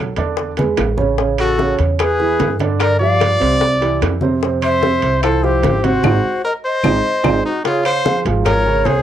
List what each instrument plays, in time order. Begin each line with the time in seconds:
Already playing: upright bass B1, grand piano F#3 A4
0.16 upright bass E2, grand piano D3 D4 D5, high bongo, high timbale
0.37 high bongo, high conga
0.57 grand piano G#3 G#4 B4, high bongo, high conga, high timbale
0.77 upright bass A1, high bongo, low bongo, high timbale, low timbale, claves
0.97 grand piano C#3 C#4 C#5, high bongo, low conga
1.18 grand piano C#3 C#4 C#5, high bongo, high conga
1.39 trumpet F#4, flute A4, high conga, high timbale, claves
1.58 grand piano C#3 C#4 C#5, high bongo, high conga, low timbale
1.79 upright bass E2, high bongo, high conga, high timbale
1.99 grand piano E3 E4 G#4, trumpet G#4, flute B4, high bongo, high conga, high timbale, claves
2.19 grand piano E3 E4 G#4, high bongo, high conga
2.40 upright bass G2, high bongo, low bongo, high conga, high timbale, low timbale
2.59 grand piano D3 D4 D5, high bongo, high conga, high timbale
2.80 trumpet A#4, flute D5, high bongo, high conga, high timbale, claves
2.99 grand piano F3 F4 G4, trumpet D5, flute F5, high conga
3.20 high bongo, high conga, high timbale, low timbale, claves
3.40 upright bass C2, grand piano C3 C4 C5, high bongo, high timbale
3.61 high bongo, high conga
3.81 grand piano E3 E4 G4, high bongo, high conga, high timbale
4.01 upright bass F2, high bongo, low bongo, high conga, high timbale, low timbale, claves
4.21 grand piano C3 C4 C5, high bongo, high conga
4.41 grand piano C3 C4 C5, high bongo, high conga
4.61 trumpet C5, flute E5, high conga, high timbale, claves
4.82 grand piano C3 C4 C5, high bongo, high conga, low timbale
5.02 upright bass C2, high bongo, high conga, high timbale
5.23 grand piano E3 E4 F4, trumpet A4, flute C5, high bongo, high conga, high timbale, claves
5.43 grand piano F3 E4 F4, trumpet G4, flute C5, high bongo, high conga
5.63 upright bass G#1, high bongo, low bongo, high conga, high timbale, low timbale
5.83 grand piano C3 C4 C5, trumpet F#4, flute C5, high bongo, high conga, high timbale
6.03 upright bass G#1, grand piano G#3 C4 D#4, low bongo, high conga, high timbale, claves
6.45 trumpet A#4, flute D#5
6.65 trumpet C5, flute D#5
6.84 upright bass G#1, grand piano G#3 C4 D#4, low bongo, high conga, high timbale, claves
7.24 upright bass G#1, grand piano G#3 C4 D#4, low bongo, high conga, high timbale, claves
7.45 trumpet D#4, flute F#4
7.64 grand piano C#3 C#4 C#5, trumpet F4, flute G#4, high bongo, high conga, high timbale
7.85 trumpet C5, flute F5, high conga, high timbale, claves
8.05 grand piano F3 F4 G#4, high bongo, high conga
8.25 upright bass G#1, grand piano F3 F4 G#4, high bongo, high conga, high timbale
8.45 trumpet A#4, flute C#5, high bongo, high conga, low conga, high timbale, claves
8.66 grand piano C#3 C#4 C#5, high bongo, high conga
8.85 upright bass C2, trumpet G#4, flute C5, high bongo, low bongo, high conga, high timbale, low timbale